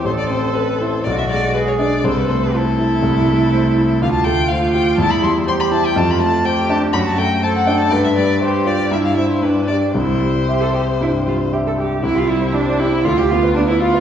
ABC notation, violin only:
X:1
M:4/4
L:1/16
Q:1/4=121
K:C
V:1 name="Violin"
c d c2 B2 c2 d e d2 B _d =d2 | c B c B A12 | f a g2 f2 g2 a b c'2 c' b a g | a b a2 g2 a2 b a g2 a ^f g a |
d e d2 c2 d2 e f e c B2 d2 | c12 z4 | E F E2 D2 E2 F G F2 D E F2 |]